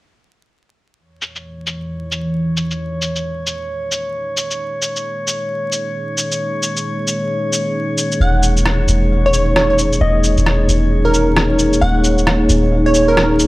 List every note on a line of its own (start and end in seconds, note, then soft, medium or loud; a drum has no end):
0.98 4.60 E3 medium
0.98 13.47 C#5 medium
1.14 13.47 A#3 medium
1.22 13.47 G#4 medium
1.22 shaker medium
1.36 shaker soft
1.40 13.47 D#4 medium
1.67 shaker medium
1.96 13.47 C#5 medium
2.12 shaker soft
2.57 shaker medium
2.71 shaker soft
3.02 shaker medium
3.16 shaker soft
3.47 shaker medium
3.92 shaker medium
4.37 shaker medium
4.51 shaker soft
4.82 shaker medium
4.96 shaker soft
5.28 shaker medium
5.72 shaker medium
6.18 shaker medium
6.32 shaker soft
6.63 shaker soft
6.77 shaker soft
7.08 shaker soft
7.53 shaker medium
7.98 shaker soft
8.12 shaker soft
8.20 8.87 E1 medium
8.20 8.45 F#5 medium
8.43 shaker soft
8.57 shaker soft
8.66 cross-stick medium
8.88 10.00 E1 medium
8.88 shaker soft
9.26 9.31 C#5 medium
9.33 9.43 C#5 medium
9.33 shaker soft
9.56 9.65 C#5 medium
9.56 cross-stick loud
9.70 9.76 C#5 medium
9.79 shaker soft
9.93 shaker soft
10.01 10.36 E1 medium
10.01 10.38 D#5 medium
10.24 shaker soft
10.37 10.68 E1 medium
10.37 shaker soft
10.46 cross-stick medium
10.69 11.81 E1 medium
10.69 shaker medium
11.05 11.50 A#4 medium
11.14 shaker soft
11.36 cross-stick medium
11.59 shaker soft
11.73 shaker soft
11.81 12.48 D#1 medium
11.81 12.06 F#5 medium
12.04 shaker soft
12.18 shaker soft
12.27 cross-stick medium
12.49 13.47 D#1 medium
12.49 shaker medium
12.86 12.92 C#5 medium
12.94 13.03 C#5 medium
12.94 shaker medium
13.08 13.32 A#4 medium
13.17 cross-stick loud
13.39 shaker soft